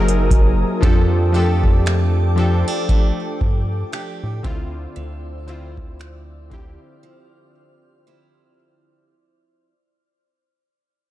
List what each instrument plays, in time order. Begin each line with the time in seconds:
Already playing: analog synth bass F#1, synth keys F#3 D#4 G4 G#4 A#4 C5, steel-string acoustic guitar F#3, ambient pad A#4 G#5 D#6
0.08 closed hi-hat
0.31 kick, closed hi-hat
0.81 analog synth bass F2, synth keys F3 D4 G4 A4, steel-string acoustic guitar F3, ambient pad A4 G5 D6, kick
1.32 synth keys F3 D4 G4 A4, steel-string acoustic guitar A3 D4 G4
1.64 kick
1.86 steel-string acoustic guitar A3, finger snap
2.36 synth keys F3 D4 G4 A4, steel-string acoustic guitar C4
2.68 steel-string acoustic guitar D4
2.89 steel-string acoustic guitar A3, kick
3.41 analog synth bass G2, kick
3.92 steel-string acoustic guitar A3 D4 G4, finger snap
4.23 analog synth bass A2
4.43 analog synth bass D2, synth keys D3 C4 E4 F4, steel-string acoustic guitar D3, ambient pad C5 D5 E6, kick
4.96 analog synth bass D2, steel-string acoustic guitar D3
5.46 synth keys D3 C4 E4 F4, steel-string acoustic guitar F3 C4 E4
5.77 kick
5.99 steel-string acoustic guitar F3, finger snap
6.50 synth keys D3 C4 E4 G4, steel-string acoustic guitar C4, ambient pad F6, kick
7.03 steel-string acoustic guitar F3
8.07 steel-string acoustic guitar F3 C4 E4